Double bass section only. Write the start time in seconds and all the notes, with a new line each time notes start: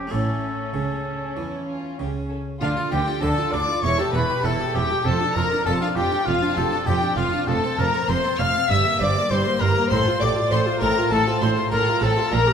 0.12 A1
0.74 C#2
1.37 E2
2.00 C#2
2.61 D2
2.92 D2
3.23 D2
3.53 D2
3.84 E1
4.14 E1
4.45 E1
4.75 E1
5.06 F1
5.36 F1
5.66 F1
5.97 F1
6.27 F1
6.57 F1
6.87 F1
7.17 F1
7.48 F1
7.78 F1
8.09 F1
8.39 F1
8.70 G1
9.01 G1
9.31 G1
9.61 G1
9.91 A1
10.21 A1
10.51 A1
10.81 A1
11.11 A1
11.41 A1
11.72 A1
12.02 A1
12.32 A#1